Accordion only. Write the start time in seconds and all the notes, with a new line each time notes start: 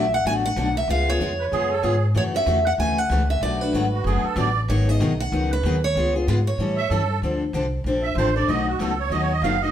1.39 B4
1.52 G#4
1.71 A4
1.83 G#4
3.92 F#4
4.05 G#4
4.24 A4
4.38 D5
6.77 E5
6.89 A4
8.03 E5
8.17 C5
8.36 D5
8.48 D#5
8.68 F#4
8.80 A4
8.99 C#5
9.12 D#5
9.22 C#5
9.32 D#5
9.43 F5
9.62 D#5